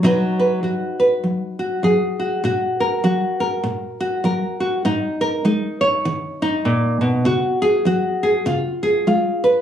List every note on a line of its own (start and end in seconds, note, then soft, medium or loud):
0.03 0.59 B2 medium
0.03 0.62 F#3 medium
0.03 3.55 D#4 medium
0.03 0.63 F#4 medium
0.03 0.38 B4 medium
0.39 0.98 B4 medium
0.63 1.19 F#3 medium
0.63 1.58 F#4 medium
1.00 1.84 B4 medium
1.24 1.79 F#3 medium
1.59 2.18 F#4 medium
1.83 2.39 F#3 medium
1.83 2.41 G#4 medium
2.20 2.41 F#4 medium
2.44 2.99 A#2 medium
2.44 3.03 F#4 medium
2.80 3.39 A#4 medium
3.04 3.59 F#3 medium
3.04 3.99 F#4 medium
3.40 4.24 A#4 medium
3.63 4.19 A#2 medium
4.00 4.59 F#4 medium
4.24 4.80 F#3 medium
4.24 4.82 A#4 medium
4.60 4.82 F#4 medium
4.85 5.40 G#2 medium
4.85 5.44 D#4 medium
5.21 5.80 A#4 medium
5.45 6.00 G#3 medium
5.45 6.41 D#4 medium
5.81 7.23 C#5 medium
6.05 6.61 D#3 medium
6.42 7.23 D#4 medium
6.65 7.01 A#2 medium
7.01 7.26 B2 medium
7.25 7.81 C#3 medium
7.25 7.85 F#4 medium
7.62 8.22 G#4 medium
7.85 8.41 F#3 medium
7.85 8.43 F#4 medium
8.23 8.44 G#4 medium
8.46 9.01 C#3 medium
8.46 9.06 F4 medium
8.83 9.43 G#4 medium
9.07 9.62 G#3 medium
9.07 9.62 F4 medium
9.44 9.62 B4 medium